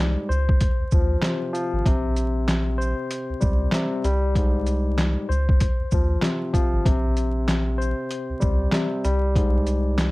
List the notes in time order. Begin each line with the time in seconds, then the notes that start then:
Already playing: C2 G#2 G3
0.29 C#2 C5, shaker
0.49 kick
0.61 kick, closed hi-hat
0.80 D#2
0.91 D#2 F3, kick, shaker
1.22 C3, snare, clap, closed hi-hat
1.53 F3, closed hi-hat, shaker
1.73 G#1
1.85 A#1 C3, kick, closed hi-hat
2.16 closed hi-hat, shaker
2.48 snare, clap, closed hi-hat
2.78 C5, shaker
3.11 closed hi-hat
3.29 C#2
3.40 C#2 G3, kick, shaker
3.72 C3, snare, clap, closed hi-hat
4.04 C2 G3, closed hi-hat, shaker
4.36 G#2, kick, closed hi-hat
4.67 closed hi-hat, shaker
4.98 snare, clap, closed hi-hat
5.29 C#2 C5, shaker
5.49 kick
5.60 kick, closed hi-hat
5.79 D#2
5.91 D#2 F3, kick, shaker
6.22 C3, snare, clap, closed hi-hat
6.53 F3, kick, closed hi-hat, shaker
6.73 G#1
6.86 A#1 C3, kick, closed hi-hat
7.17 closed hi-hat, shaker
7.48 snare, clap, closed hi-hat
7.78 C5, shaker
8.11 closed hi-hat
8.29 C#2
8.40 C#2 G3, kick, shaker
8.72 C3, snare, clap, closed hi-hat
9.05 C2 G3, closed hi-hat, shaker
9.36 G#2, kick, closed hi-hat
9.67 closed hi-hat, shaker
9.98 snare, clap, closed hi-hat